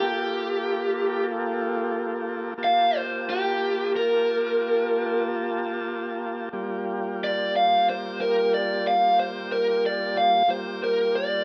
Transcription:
Already playing: tonewheel organ A#3 F4 G4 A4
0.00 lead electric guitar G4
2.58 tonewheel organ A#3 F4 G4 A5
2.64 lead electric guitar F5
2.97 lead electric guitar C5
3.30 lead electric guitar G4
3.96 lead electric guitar A#4
6.53 tonewheel organ G3 A#3 F4 G4
7.24 lead electric guitar D5
7.56 lead electric guitar F5
7.89 lead electric guitar C5
8.21 lead electric guitar A#4
8.54 lead electric guitar D5
8.87 lead electric guitar F5
9.20 lead electric guitar C5
9.52 lead electric guitar A#4
9.86 lead electric guitar D5
10.17 lead electric guitar F5
10.48 tonewheel organ G3 A#3 F4 G4, lead electric guitar C5
10.84 lead electric guitar A#4
11.15 lead electric guitar D5

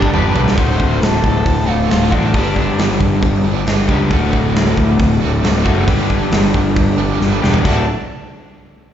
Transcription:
Already playing: overdriven electric guitar G2 D3 G3 B3 D4 G4 A4, tonewheel organ G3 D4 B4
0.02 kick
0.13 picked electric bass G1, overdriven electric guitar G2 D3 G3 B3 D4 G4 B4, mid tom
0.35 picked electric bass B1, floor tom
0.48 snare
0.56 picked electric bass D1, overdriven electric guitar D2 A2 D3 A3 F#4 C5, kick, open hi-hat
0.80 picked electric bass D1, kick
1.01 picked electric bass D1, overdriven electric guitar A4, snare, open hi-hat
1.24 picked electric bass D1, overdriven electric guitar A4, kick
1.45 picked electric bass D1, kick, open hi-hat
1.66 picked electric bass D1, overdriven electric guitar D2 A2 D3 A3 F4 F#4
1.89 picked electric bass D1, overdriven electric guitar D2 A2 D3 A3 F4 F#4, snare, open hi-hat
2.12 picked electric bass A1, overdriven electric guitar D2 A2 D3 A3 D4 F#4, kick
2.33 picked electric bass G1, overdriven electric guitar G2 D3 G3 B3 D4 G4, kick, open hi-hat
2.56 picked electric bass G1, kick
2.78 picked electric bass G1, snare, open hi-hat
3.00 picked electric bass G1, kick
3.22 picked electric bass G1, kick, open hi-hat
3.44 picked electric bass G1, overdriven electric guitar G2 D3 G3 B3 D4 G4
3.66 picked electric bass G1, overdriven electric guitar G2 D3 G3 B3 D4 G4, snare, open hi-hat
3.88 picked electric bass C#2, overdriven electric guitar G2 D3 G3 B3 D4 G4, kick
4.10 picked electric bass D1, overdriven electric guitar D2 A2 D3 A3 F#4, tonewheel organ F#3 D4 A4, kick, open hi-hat
4.33 picked electric bass D1, kick
4.55 picked electric bass D1, snare, open hi-hat
4.77 picked electric bass D1, kick
4.99 picked electric bass D1, kick, open hi-hat
5.20 picked electric bass D1, overdriven electric guitar D2 A2 D3 A3 F#4
5.42 picked electric bass D1, overdriven electric guitar D2 A2 D3 A3 F#4, snare, open hi-hat
5.64 picked electric bass F#1, overdriven electric guitar D2 A2 D3 A3 F#4, kick
5.86 picked electric bass G1, overdriven electric guitar G2 D3 G3 B3 D4 G4, tonewheel organ G3 D4 B4, kick, open hi-hat
6.10 picked electric bass G1, kick
6.32 picked electric bass G1, snare, open hi-hat
6.54 picked electric bass G1, kick
6.76 picked electric bass G1, kick, open hi-hat
6.98 picked electric bass G1, overdriven electric guitar G2 D3 G3 B3 D4 G4
7.20 picked electric bass G1, overdriven electric guitar G2 D3 G3 B3 D4 G4, snare
7.42 picked electric bass E1, overdriven electric guitar G2 D3 G3 B3 D4 G4, snare
7.54 floor tom
7.65 picked electric bass D1, overdriven electric guitar D2 A2 D3 A3 D4 F#4, tonewheel organ F#3 D4 A4, kick, crash

